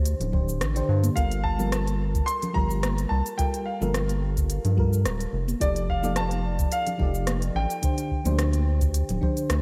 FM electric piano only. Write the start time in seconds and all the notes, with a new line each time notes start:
Already playing: D3 D4 G4 C5
0.32 D3 D4 G4 C5
0.75 D3 D4 G4 C5
1.15 G3 F4 A4 A#4
1.58 G3 F4 A4 A#4
2.53 G3 F4 G4
2.58 A#4
3.38 G3 F4 A4 A#4
3.81 G3 F4 A4 A#4
4.77 G3 F4 A4 A#4
5.60 F3 D#4 G4 A4 D5
6.02 F3 D#4 G4 A4 D5
6.98 F3 D#4 G4 A4
7.02 D5
7.82 D3 D4 G4 C5
8.24 D3 D4 G4 C5
9.21 D3 D4 G4 C5